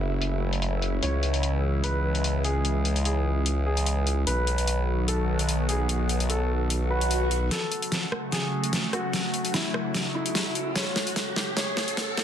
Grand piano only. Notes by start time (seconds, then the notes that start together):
1.03 C#5
1.84 B4
2.44 G#4
3.05 G#4
3.66 G#4
4.27 B4
5.08 A4
5.69 G#4
6.30 A4
6.90 B4
7.51 A4
8.32 G#4
8.93 F#4
9.54 E4
10.15 E4
10.76 C#5
11.57 C#5